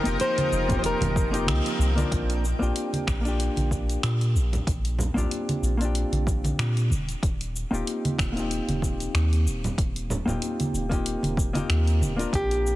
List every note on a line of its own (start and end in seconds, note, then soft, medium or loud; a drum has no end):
0.00 2.09 F3 medium
0.00 0.64 A#3 medium
0.00 2.09 D#4 medium
0.00 0.17 A#4 loud
0.00 2.09 A#4 medium
0.00 2.13 G5 medium
0.05 0.16 F1 medium
0.05 0.65 C4 medium
0.05 0.65 D#4 medium
0.05 0.66 F4 medium
0.05 0.66 G4 medium
0.05 closed hi-hat soft
0.05 shaker soft
0.20 0.78 C5 loud
0.20 closed hi-hat medium
0.20 shaker soft
0.38 closed hi-hat soft
0.38 high conga medium
0.38 shaker soft
0.52 0.93 F1 loud
0.52 shaker medium
0.68 1.29 A#3 medium
0.68 1.30 C4 medium
0.68 1.30 D#4 medium
0.68 1.31 F4 medium
0.68 1.31 G4 medium
0.68 kick medium
0.68 closed hi-hat soft
0.68 low conga loud
0.68 shaker soft
0.79 0.85 C5 medium
0.84 1.77 A#4 medium
0.84 closed hi-hat medium
0.84 shaker soft
1.01 1.48 F1 medium
1.01 closed hi-hat soft
1.01 high conga medium
1.01 low conga loud
1.01 shaker soft
1.16 kick loud
1.16 shaker medium
1.31 1.92 A#3 loud
1.31 1.92 C4 medium
1.31 1.93 D#4 medium
1.31 1.93 F4 medium
1.31 1.94 G4 loud
1.31 closed hi-hat soft
1.31 shaker soft
1.47 1.60 C2 medium
1.47 finger snap medium
1.47 closed hi-hat medium
1.47 high conga medium
1.47 shaker soft
1.66 closed hi-hat soft
1.66 shaker soft
1.79 2.03 C2 loud
1.79 shaker medium
1.95 2.43 A#3 medium
1.95 2.43 C4 medium
1.95 2.44 D4 medium
1.95 2.44 F4 medium
1.95 2.44 A#4 medium
1.95 closed hi-hat soft
1.95 high conga medium
1.95 shaker soft
2.12 2.53 A#1 loud
2.12 kick loud
2.12 closed hi-hat medium
2.12 shaker soft
2.30 closed hi-hat soft
2.30 shaker soft
2.45 shaker medium
2.59 2.71 A#1 medium
2.59 3.20 A#3 medium
2.59 3.20 C4 medium
2.59 3.21 D4 medium
2.59 3.21 F4 medium
2.59 3.22 G4 medium
2.59 shaker soft
2.76 closed hi-hat medium
2.76 shaker soft
2.93 closed hi-hat soft
2.93 high conga medium
2.93 shaker soft
3.07 3.49 A#1 loud
3.07 finger snap medium
3.07 kick medium
3.07 shaker medium
3.21 5.10 A#3 medium
3.21 5.12 D4 medium
3.25 5.13 F4 medium
3.25 5.14 G4 medium
3.25 closed hi-hat soft
3.25 shaker soft
3.40 closed hi-hat medium
3.40 shaker soft
3.56 3.96 A#1 medium
3.56 closed hi-hat soft
3.56 high conga medium
3.56 shaker soft
3.71 kick medium
3.71 shaker medium
3.90 closed hi-hat soft
3.90 shaker soft
4.03 4.36 A#2 medium
4.03 finger snap medium
4.03 closed hi-hat medium
4.03 shaker soft
4.21 closed hi-hat soft
4.21 shaker soft
4.35 4.58 A#1 loud
4.35 shaker medium
4.53 closed hi-hat soft
4.53 low conga medium
4.53 shaker soft
4.67 5.08 A#1 loud
4.67 kick loud
4.67 closed hi-hat medium
4.67 shaker soft
4.85 closed hi-hat soft
4.85 shaker soft
4.99 low conga medium
4.99 shaker medium
5.14 5.27 A#1 medium
5.14 5.75 A#3 medium
5.14 5.75 C4 medium
5.14 5.76 D4 medium
5.14 5.76 F4 medium
5.14 5.77 G4 medium
5.14 low conga medium
5.14 shaker soft
5.31 closed hi-hat medium
5.31 shaker soft
5.49 closed hi-hat soft
5.49 high conga medium
5.49 shaker soft
5.62 6.04 A#1 medium
5.62 shaker medium
5.77 6.87 A#3 medium
5.77 6.88 C4 medium
5.77 6.89 D4 medium
5.77 closed hi-hat soft
5.82 6.90 F4 medium
5.82 6.91 G4 medium
5.82 shaker soft
5.95 closed hi-hat medium
5.95 shaker soft
6.12 6.52 A#1 medium
6.12 closed hi-hat soft
6.12 high conga medium
6.12 shaker soft
6.27 kick loud
6.27 shaker medium
6.44 closed hi-hat soft
6.44 high conga medium
6.44 shaker soft
6.58 6.92 A#2 medium
6.58 finger snap medium
6.58 closed hi-hat medium
6.58 shaker soft
6.77 closed hi-hat soft
6.77 shaker soft
6.90 7.14 D#1 loud
6.90 high conga medium
6.90 shaker medium
7.09 closed hi-hat soft
7.09 shaker soft
7.23 7.64 D#1 loud
7.23 kick loud
7.23 closed hi-hat medium
7.23 shaker soft
7.41 closed hi-hat soft
7.41 shaker soft
7.56 shaker medium
7.71 7.82 D#1 loud
7.71 8.31 A#3 medium
7.71 8.31 C4 medium
7.71 8.32 D#4 medium
7.71 8.32 F4 medium
7.71 8.33 G4 medium
7.71 shaker soft
7.87 closed hi-hat medium
7.87 shaker soft
8.05 closed hi-hat soft
8.05 high conga medium
8.05 shaker soft
8.18 8.60 D#1 medium
8.18 finger snap medium
8.18 kick loud
8.18 shaker medium
8.32 10.21 A#3 medium
8.32 10.22 C4 medium
8.32 10.23 D#4 medium
8.37 10.24 F4 medium
8.37 10.25 G4 medium
8.37 closed hi-hat soft
8.37 shaker soft
8.51 closed hi-hat medium
8.51 shaker soft
8.68 9.07 D#1 medium
8.68 closed hi-hat soft
8.68 high conga medium
8.68 shaker soft
8.82 kick medium
8.82 shaker medium
9.00 closed hi-hat soft
9.00 shaker soft
9.14 9.48 D#2 medium
9.14 finger snap medium
9.14 closed hi-hat medium
9.14 shaker soft
9.33 closed hi-hat soft
9.33 shaker soft
9.46 9.69 D#1 medium
9.46 shaker medium
9.64 closed hi-hat soft
9.64 low conga medium
9.64 shaker soft
9.78 10.19 D#1 loud
9.78 kick loud
9.78 closed hi-hat medium
9.78 shaker soft
9.96 closed hi-hat soft
9.96 shaker soft
10.10 low conga medium
10.10 shaker medium
10.26 10.37 D#1 medium
10.26 10.86 A#3 medium
10.26 10.87 C4 medium
10.26 10.87 D#4 medium
10.26 10.88 F4 medium
10.26 10.88 G4 medium
10.26 low conga medium
10.26 shaker soft
10.42 closed hi-hat medium
10.42 shaker soft
10.60 closed hi-hat soft
10.60 high conga medium
10.60 shaker soft
10.73 11.15 D#1 medium
10.73 shaker medium
10.89 11.51 A#3 medium
10.89 11.51 C4 medium
10.89 11.52 D#4 medium
10.89 11.52 F4 medium
10.89 kick medium
10.89 closed hi-hat soft
10.89 shaker soft
10.93 11.53 G4 medium
11.06 closed hi-hat medium
11.06 shaker soft
11.23 11.62 D#1 medium
11.23 closed hi-hat soft
11.23 high conga medium
11.23 shaker soft
11.37 kick loud
11.37 shaker medium
11.53 12.14 A#3 medium
11.53 12.14 C4 medium
11.53 12.14 D#4 medium
11.53 12.15 F4 medium
11.53 12.16 G4 loud
11.53 closed hi-hat soft
11.53 high conga medium
11.53 shaker soft
11.69 12.03 D#2 medium
11.69 finger snap medium
11.69 closed hi-hat medium
11.69 shaker soft
11.87 closed hi-hat soft
11.87 shaker soft
12.01 12.25 D#1 loud
12.01 high conga medium
12.01 shaker medium
12.16 12.76 A#3 medium
12.16 12.76 C4 medium
12.16 12.76 D4 medium
12.16 12.76 F4 medium
12.16 12.76 A#4 medium
12.16 closed hi-hat soft
12.16 shaker soft
12.33 12.74 A#1 loud
12.33 12.76 G4 medium
12.33 kick loud
12.33 closed hi-hat medium
12.33 shaker soft
12.51 closed hi-hat soft
12.51 shaker soft
12.67 shaker medium